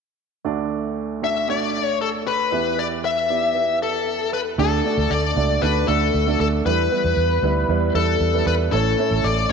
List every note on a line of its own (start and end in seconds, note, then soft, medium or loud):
0.45 2.48 D2 medium
0.45 2.48 D3 medium
0.45 1.14 A3 medium
0.45 1.15 D4 medium
0.45 1.15 F#4 medium
0.45 1.15 D5 medium
1.22 1.46 A3 soft
1.22 1.46 D4 soft
1.22 1.46 F#4 soft
1.22 1.46 D5 soft
1.22 1.47 E5 medium
1.48 2.41 A3 medium
1.48 2.41 D4 soft
1.48 2.42 F#4 medium
1.48 2.42 D5 medium
1.48 1.85 D5 medium
1.85 1.97 C#5 medium
2.02 2.08 A4 medium
2.27 2.80 B4 medium
2.51 4.55 E2 soft
2.51 4.55 E3 medium
2.51 3.21 B3 medium
2.51 3.21 E4 medium
2.51 3.22 G4 medium
2.51 3.22 E5 medium
2.79 2.86 D5 medium
3.05 3.78 E5 medium
3.29 3.53 B3 soft
3.29 3.53 E4 soft
3.29 3.53 G4 soft
3.29 3.53 D5 medium
3.54 4.48 B3 medium
3.54 4.48 E4 medium
3.54 4.48 G4 soft
3.54 4.48 E5 medium
3.83 4.30 A4 medium
4.33 4.40 B4 medium
4.58 4.80 D2 medium
4.58 5.32 D3 medium
4.58 4.82 A3 medium
4.58 4.82 D4 medium
4.58 4.82 F#4 medium
4.58 5.12 A4 medium
4.58 4.82 D5 medium
4.84 5.31 A3 medium
4.84 5.31 D4 soft
4.84 5.31 F#4 medium
4.84 5.31 D5 medium
4.97 5.08 D2 medium
5.10 5.32 D2 medium
5.10 5.64 D5 medium
5.36 5.58 C#2 medium
5.36 5.59 A3 medium
5.36 5.60 D4 soft
5.36 5.60 F#4 medium
5.36 5.60 D5 medium
5.62 5.84 D2 medium
5.62 5.85 A3 medium
5.62 5.86 D4 medium
5.62 5.86 F#4 medium
5.62 5.88 B4 medium
5.62 5.86 D5 medium
5.88 6.09 D2 medium
5.88 6.23 A3 medium
5.88 6.23 D4 medium
5.88 6.23 F#4 medium
5.88 6.39 A4 medium
5.88 6.24 D5 medium
6.14 6.35 D2 medium
6.27 6.62 A3 medium
6.27 6.62 D4 medium
6.27 6.62 F#4 medium
6.27 6.62 D5 medium
6.40 6.61 D2 medium
6.40 6.47 A4 medium
6.65 6.87 E2 medium
6.65 7.40 E3 soft
6.65 6.89 G3 medium
6.65 6.89 B3 medium
6.65 6.89 E4 medium
6.65 7.95 B4 medium
6.65 6.89 B4 medium
6.91 7.38 G3 medium
6.91 7.38 B3 medium
6.91 7.38 E4 medium
6.91 7.38 B4 medium
7.04 7.15 E2 medium
7.17 7.38 E2 medium
7.43 7.64 D2 medium
7.43 7.66 G3 medium
7.43 7.67 B3 medium
7.43 7.67 E4 medium
7.43 7.67 B4 medium
7.69 7.90 E2 medium
7.69 7.92 G3 medium
7.69 7.92 B3 medium
7.69 7.93 E4 medium
7.69 7.93 B4 medium
7.94 8.16 E2 medium
7.94 8.30 G3 medium
7.94 8.30 B3 medium
7.94 8.30 E4 medium
7.94 8.47 A4 medium
7.94 8.30 B4 medium
8.20 8.42 E2 medium
8.33 8.69 G3 medium
8.33 8.69 B3 medium
8.33 8.69 E4 soft
8.33 8.69 B4 medium
8.46 8.68 E2 medium
8.46 8.54 B4 medium
8.72 8.94 A1 medium
8.72 9.47 A2 soft
8.72 8.96 A3 medium
8.72 8.96 C#4 medium
8.72 8.96 E4 medium
8.72 9.26 A4 medium
8.72 8.96 C#5 medium
8.98 9.45 A3 medium
8.98 9.45 C#4 medium
8.98 9.45 E4 medium
8.98 9.45 C#5 medium
9.11 9.22 A1 medium
9.24 9.45 A1 medium
9.24 9.48 D5 medium